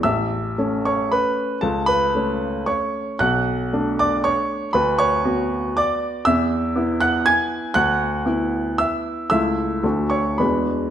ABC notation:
X:1
M:3/4
L:1/8
Q:1/4=115
K:A
V:1 name="Grand piano"
[ee']3 [cc'] [Bb]2 | [Aa] [Bb]3 [cc']2 | [ff']3 [dd'] [cc']2 | [Bb] [cc']3 [dd']2 |
[ee']3 [ff'] [gg']2 | [ff']4 [ee']2 | [ee']3 [cc'] [Bb]2 |]
V:2 name="Grand piano"
A,,,2 [A,C]4 | C,,2 [A,C]4 | B,,,2 [A,D]4 | D,,2 [B,F]4 |
E,,2 [B,E]4 | D,,2 [B,E]4 | [C,,A,E]2 [D,,A,DF]2 [E,,G,DF]2 |]